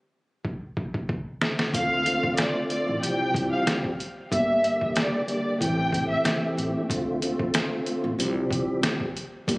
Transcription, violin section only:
1.74 2.35 F5 loud
2.38 2.67 D5 medium
2.70 2.99 D5 medium
3.03 3.49 G5 medium
3.52 3.65 F5 medium
4.32 4.92 E5 medium
4.97 5.26 D5 medium
5.29 5.58 D5 medium
5.61 6.08 G5 medium
6.10 6.39 E5 medium

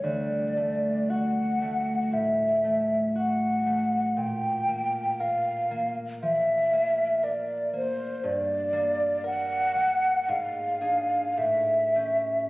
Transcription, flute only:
0.03 1.11 D5 soft
1.10 2.15 F#5 soft
2.14 3.16 E5 soft
3.17 4.19 F#5 soft
4.18 5.22 G5 soft
5.21 5.96 F5 soft
6.23 7.25 E5 medium
7.24 7.74 D5 soft
7.76 8.27 C5 soft
8.25 9.25 D5 soft
9.26 10.31 F#5 medium
10.30 11.39 F5 medium
11.38 12.50 E5 medium

